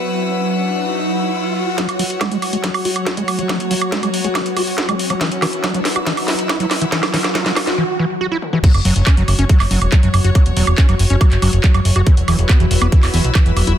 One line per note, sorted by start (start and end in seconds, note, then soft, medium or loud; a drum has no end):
0.00 1.77 F#3 medium
0.00 3.06 E4 medium
0.00 1.77 F#4 medium
0.00 2.35 B4 medium
0.00 7.78 F#5 medium
0.00 2.44 E6 medium
0.00 riser medium
1.78 1.87 F#3 medium
1.78 7.78 F#3 medium
1.78 7.78 F#4 medium
1.78 6.58 F#4 medium
1.78 kick loud
1.78 snare soft
1.78 closed hi-hat medium
1.78 riser medium
1.89 6.35 C#5 medium
1.89 closed hi-hat medium
1.89 high woodblock soft
1.99 2.03 F#3 medium
1.99 open hi-hat loud
2.10 closed hi-hat medium
2.21 2.30 G#3 medium
2.21 kick loud
2.21 snare medium
2.21 closed hi-hat medium
2.21 high woodblock medium
2.32 2.37 G#3 medium
2.32 closed hi-hat medium
2.42 open hi-hat loud
2.42 high woodblock soft
2.53 2.56 G#3 medium
2.53 closed hi-hat medium
2.64 2.70 F#3 medium
2.64 kick loud
2.64 snare medium
2.64 closed hi-hat medium
2.74 open hi-hat medium
2.74 high woodblock medium
2.85 2.91 F#4 medium
2.85 open hi-hat loud
2.96 closed hi-hat medium
2.96 high woodblock soft
3.07 3.15 F#4 loud
3.07 kick loud
3.07 snare medium
3.07 closed hi-hat medium
3.17 3.23 G#3 medium
3.17 closed hi-hat medium
3.28 open hi-hat loud
3.28 high woodblock medium
3.39 3.42 F#3 medium
3.39 closed hi-hat medium
3.49 3.58 F#3 medium
3.49 kick loud
3.49 snare medium
3.49 closed hi-hat medium
3.49 high woodblock soft
3.60 closed hi-hat medium
3.71 3.74 F#3 medium
3.71 open hi-hat loud
3.82 closed hi-hat soft
3.82 high woodblock medium
3.92 4.01 G#3 medium
3.92 kick loud
3.92 snare medium
3.92 closed hi-hat medium
4.03 4.09 G#3 medium
4.03 closed hi-hat medium
4.03 high woodblock soft
4.14 open hi-hat loud
4.24 4.28 G#3 medium
4.24 closed hi-hat medium
4.35 4.41 F#3 medium
4.35 kick loud
4.35 snare medium
4.35 closed hi-hat medium
4.35 high woodblock medium
4.46 closed hi-hat medium
4.57 4.62 F#4 medium
4.57 open hi-hat loud
4.57 high woodblock soft
4.67 open hi-hat medium
4.78 4.87 F#4 loud
4.78 kick loud
4.78 snare medium
4.78 closed hi-hat medium
4.89 4.95 G#3 medium
4.89 closed hi-hat medium
4.89 high woodblock medium
4.99 open hi-hat loud
5.10 5.14 F#3 medium
5.10 closed hi-hat medium
5.10 high woodblock soft
5.21 5.30 E3 medium
5.21 7.78 E4 medium
5.21 kick loud
5.21 snare medium
5.21 closed hi-hat medium
5.32 7.78 B4 medium
5.32 closed hi-hat soft
5.42 5.46 E3 medium
5.42 snare medium
5.42 open hi-hat loud
5.42 high woodblock medium
5.53 closed hi-hat soft
5.64 5.72 F#3 medium
5.64 kick loud
5.64 snare medium
5.64 closed hi-hat medium
5.64 high woodblock soft
5.71 5.80 F#3 medium
5.71 7.78 E6 medium
5.71 closed hi-hat medium
5.85 snare medium
5.85 open hi-hat loud
5.96 5.99 F#4 medium
5.96 closed hi-hat medium
5.96 high woodblock medium
6.07 6.12 E3 medium
6.07 kick loud
6.07 snare medium
6.07 closed hi-hat medium
6.17 open hi-hat medium
6.17 high woodblock soft
6.28 6.34 E4 medium
6.28 snare medium
6.28 open hi-hat loud
6.39 closed hi-hat medium
6.49 6.58 E4 loud
6.49 kick loud
6.49 snare medium
6.49 closed hi-hat medium
6.49 high woodblock medium
6.60 6.66 F#3 medium
6.60 closed hi-hat medium
6.71 snare medium
6.71 open hi-hat loud
6.71 high woodblock soft
6.82 6.85 E3 medium
6.82 closed hi-hat medium
6.92 7.01 E3 medium
6.92 kick loud
6.92 snare medium
6.92 closed hi-hat medium
7.03 snare medium
7.03 closed hi-hat soft
7.03 high woodblock medium
7.14 7.17 E3 medium
7.14 snare loud
7.14 open hi-hat loud
7.24 snare medium
7.24 closed hi-hat soft
7.24 high woodblock soft
7.35 7.44 F#3 medium
7.35 kick loud
7.35 snare loud
7.35 closed hi-hat medium
7.46 7.52 F#3 medium
7.46 snare medium
7.46 closed hi-hat medium
7.57 snare loud
7.57 open hi-hat loud
7.57 high woodblock medium
7.67 7.71 F#4 medium
7.67 snare medium
7.67 closed hi-hat medium
7.78 7.84 E3 medium
7.99 8.05 E3 medium
8.21 8.27 F#4 medium
8.32 8.37 E4 medium
8.42 high tom medium
8.53 8.59 E3 medium
8.53 mid tom medium
8.64 13.78 F#3 medium
8.64 8.72 F#3 medium
8.64 13.78 F#4 medium
8.64 12.85 F#4 medium
8.64 kick loud
8.64 closed hi-hat medium
8.64 crash loud
8.74 8.80 F#1 medium
8.74 closed hi-hat medium
8.74 high woodblock soft
8.85 8.91 F#1 loud
8.85 8.94 F#3 medium
8.85 open hi-hat loud
8.91 13.03 C#5 medium
8.96 9.02 F#1 medium
8.96 closed hi-hat medium
9.07 9.15 C#4 medium
9.07 kick loud
9.07 clap loud
9.07 closed hi-hat medium
9.07 high woodblock medium
9.17 9.23 F#1 medium
9.17 9.23 F#3 medium
9.17 closed hi-hat medium
9.28 9.34 F#1 loud
9.28 open hi-hat loud
9.28 high woodblock soft
9.39 9.45 F#1 medium
9.39 9.45 C#4 medium
9.39 closed hi-hat medium
9.49 9.58 F#3 medium
9.49 kick loud
9.49 closed hi-hat medium
9.60 9.66 F#1 medium
9.60 clap soft
9.60 open hi-hat medium
9.60 high woodblock medium
9.71 9.77 F#1 loud
9.71 9.80 F#3 medium
9.71 open hi-hat loud
9.82 9.88 E1 medium
9.82 closed hi-hat medium
9.82 high woodblock soft
9.92 10.01 F#3 medium
9.92 kick loud
9.92 clap loud
9.92 closed hi-hat medium
10.03 10.09 F#1 medium
10.03 10.09 F#3 medium
10.03 closed hi-hat medium
10.14 10.20 F#1 loud
10.14 open hi-hat loud
10.14 high woodblock medium
10.24 10.30 F#1 medium
10.24 10.30 F#4 medium
10.24 closed hi-hat medium
10.35 10.44 F#3 medium
10.35 kick loud
10.35 closed hi-hat medium
10.35 high woodblock soft
10.46 10.52 E1 medium
10.46 closed hi-hat medium
10.57 10.63 E1 loud
10.57 10.65 F#3 medium
10.57 open hi-hat loud
10.67 10.73 E1 medium
10.67 closed hi-hat medium
10.67 high woodblock medium
10.78 10.87 C#4 medium
10.78 kick loud
10.78 clap loud
10.78 closed hi-hat medium
10.89 10.95 F#1 medium
10.89 10.95 F#3 medium
10.89 closed hi-hat medium
10.89 high woodblock soft
10.99 11.05 F#1 loud
10.99 open hi-hat loud
11.10 11.16 F#1 loud
11.10 11.16 C#4 medium
11.10 closed hi-hat medium
11.21 11.30 F#3 medium
11.21 kick loud
11.21 closed hi-hat medium
11.21 high woodblock medium
11.32 11.38 F#1 medium
11.32 clap soft
11.32 closed hi-hat medium
11.42 11.48 F#1 loud
11.42 11.51 F#3 medium
11.42 open hi-hat loud
11.42 high woodblock soft
11.53 11.59 F#1 medium
11.53 closed hi-hat medium
11.64 11.72 F#3 medium
11.64 kick loud
11.64 clap loud
11.64 closed hi-hat medium
11.74 11.80 F#1 medium
11.74 11.80 F#3 medium
11.74 closed hi-hat medium
11.74 high woodblock medium
11.85 11.91 F#1 loud
11.85 open hi-hat loud
11.96 12.02 F#1 medium
11.96 12.02 F#4 medium
11.96 closed hi-hat medium
11.96 high woodblock soft
12.07 12.15 E3 medium
12.07 13.78 E4 medium
12.07 kick loud
12.07 closed hi-hat medium
12.17 12.23 E1 medium
12.17 closed hi-hat medium
12.28 12.34 E1 medium
12.28 12.37 E3 medium
12.28 13.78 B4 medium
12.28 open hi-hat loud
12.28 high woodblock medium
12.39 12.45 E1 loud
12.39 closed hi-hat medium
12.49 12.58 B3 medium
12.49 kick loud
12.49 clap loud
12.49 closed hi-hat medium
12.49 high woodblock soft
12.60 12.66 E1 medium
12.60 12.66 E3 medium
12.60 closed hi-hat medium
12.65 13.78 E6 medium
12.71 12.77 E1 loud
12.71 open hi-hat loud
12.82 12.88 E1 medium
12.82 12.87 B3 medium
12.82 closed hi-hat medium
12.82 high woodblock medium
12.92 13.01 E3 medium
12.92 kick loud
12.92 closed hi-hat medium
13.03 13.09 E1 medium
13.03 clap soft
13.03 open hi-hat medium
13.03 high woodblock soft
13.14 13.20 E1 loud
13.14 13.22 E3 medium
13.14 open hi-hat loud
13.24 13.30 B1 medium
13.24 closed hi-hat medium
13.35 13.44 E3 medium
13.35 kick loud
13.35 clap loud
13.35 closed hi-hat medium
13.35 high woodblock medium
13.46 13.52 E1 medium
13.46 13.52 E3 medium
13.46 closed hi-hat medium
13.57 13.63 E1 loud
13.57 open hi-hat loud
13.57 high woodblock soft
13.67 13.73 E1 medium
13.67 13.73 E4 medium
13.67 closed hi-hat medium